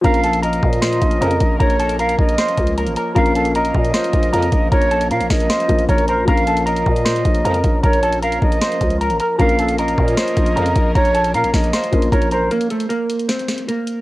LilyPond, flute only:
\new Staff \with { instrumentName = "Flute" } { \time 4/4 \key bes \minor \tempo 4 = 154 f''4 ees''2. | des''4 f''8 ees''4. r4 | f''4 ees''2. | des''4 f''8 ees''4. des''8 c''8 |
f''4 ees''2. | des''4 f''8 ees''4. r4 | f''4 ees''2. | des''4 f''8 ees''4. des''8 c''8 |
r1 | }